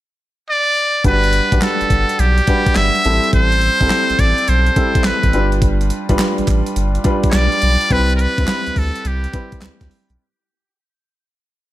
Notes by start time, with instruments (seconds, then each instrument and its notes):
0.50 muted trumpet D5
1.04 analog synth bass G1, grand piano G3 D4 F#4 B4, muted trumpet B4, kick, closed hi-hat
1.24 closed hi-hat
1.33 closed hi-hat
1.52 analog synth bass A1, grand piano G3 D4 F#4 B4, kick, closed hi-hat
1.61 muted trumpet A4, snare, clap, closed hi-hat
1.81 analog synth bass G1, closed hi-hat
1.90 analog synth bass G1, kick, closed hi-hat
2.09 closed hi-hat
2.19 analog synth bass B1, muted trumpet G4, closed hi-hat
2.38 closed hi-hat
2.47 grand piano G3 D4 F#4 B4, kick, closed hi-hat
2.66 kick, closed hi-hat
2.75 analog synth bass G1, muted trumpet E5, snare, clap, closed hi-hat
2.95 closed hi-hat
3.05 analog synth bass A1, grand piano G3 C4 E4 A4, closed hi-hat
3.24 closed hi-hat
3.33 analog synth bass A1, muted trumpet C5, kick, closed hi-hat
3.52 closed hi-hat
3.61 closed hi-hat
3.81 analog synth bass G1, grand piano G3 C4 E4 A4, kick, closed hi-hat
3.90 snare, clap, closed hi-hat
4.09 analog synth bass A1, closed hi-hat
4.19 analog synth bass A1, muted trumpet D5, kick, closed hi-hat
4.38 closed hi-hat
4.48 analog synth bass B1, muted trumpet C5, closed hi-hat
4.67 closed hi-hat
4.76 grand piano G3 C4 E4 A4, kick, closed hi-hat
4.95 kick, closed hi-hat
5.04 analog synth bass A1, muted trumpet B4, snare, clap, closed hi-hat
5.23 analog synth bass A1, kick, closed hi-hat
5.33 analog synth bass G1, grand piano G3 D4 F4 B4, closed hi-hat
5.52 closed hi-hat
5.62 kick, closed hi-hat
5.81 closed hi-hat
5.90 closed hi-hat
6.09 analog synth bass G1, grand piano G3 D4 F4 B4, kick, closed hi-hat
6.19 snare, clap, closed hi-hat
6.38 analog synth bass A1, closed hi-hat
6.47 analog synth bass A1, kick, clap, closed hi-hat
6.66 closed hi-hat
6.76 analog synth bass G1, closed hi-hat
6.95 closed hi-hat
7.04 grand piano G3 D4 F4 B4, kick, closed hi-hat
7.23 kick, closed hi-hat
7.30 muted trumpet C#5, snare, clap, closed hi-hat
7.34 analog synth bass B1, muted trumpet D5
7.52 closed hi-hat
7.62 analog synth bass B1, closed hi-hat
7.81 closed hi-hat
7.90 analog synth bass C2, grand piano G3 C4 E4 B4, muted trumpet B4, kick, closed hi-hat
8.10 closed hi-hat
8.16 muted trumpet A#4, closed hi-hat
8.21 muted trumpet B4
8.38 analog synth bass D2, grand piano G3 C4 E4 B4, kick, closed hi-hat
8.47 snare, clap, closed hi-hat
8.66 analog synth bass D2, closed hi-hat
8.76 analog synth bass D2, muted trumpet A4, kick, open hi-hat
8.95 closed hi-hat
9.05 analog synth bass C2, muted trumpet G4, closed hi-hat
9.24 closed hi-hat
9.33 grand piano G3 C4 E4 B4, kick, closed hi-hat
9.52 kick, closed hi-hat
9.61 analog synth bass D2, snare, clap, closed hi-hat
9.81 analog synth bass D2, kick, snare, closed hi-hat
9.91 open hi-hat
10.10 analog synth bass B1, closed hi-hat